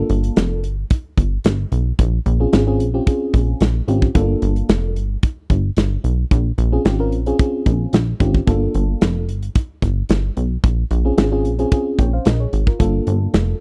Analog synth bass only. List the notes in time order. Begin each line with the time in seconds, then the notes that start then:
0.10 G1
0.37 F1
0.64 G1
1.17 G1
1.45 G1
1.72 B1
1.99 A#1
2.26 A#1
2.53 G#1
2.80 A#1
3.34 A#1
3.61 A#1
3.88 G#1
4.15 G1
4.42 G1
4.69 F1
4.96 G1
5.50 G1
5.77 G1
6.04 B1
6.31 A#1
6.58 A#1
6.85 G#1
7.12 A#1
7.66 A#1
7.93 A#1
8.20 G#1
8.48 G1
8.75 G1
9.02 F1
9.29 G1
9.82 G1
10.10 G1
10.37 B1
10.64 A#1
10.91 A#1
11.18 G#1
11.45 A#1
11.99 A#1
12.26 A#1
12.53 G#1
12.80 G1
13.07 G1
13.34 F1